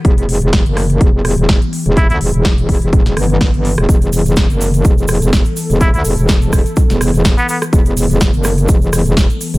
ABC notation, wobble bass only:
X:1
M:4/4
L:1/16
Q:"Swing 16ths" 1/4=125
K:Em
V:1 name="Wobble bass" clef=bass
E,,,3 E,,,2 F,,,3 E,,,3 E,,,2 z2 E,,,- | E,,, D,, E,,, E,,,3 E,,, E,,,3 G,,,3 G,,,2 E,,, | E,,,3 E,,,2 F,,,3 E,,,3 E,,,2 z2 E,,,- | E,,, D,, E,,, E,,,3 E,,, z2 E,,,2 E,,,2 z3 |
E,,,3 E,,,2 F,,,3 E,,,3 E,,,2 z2 E,,, |]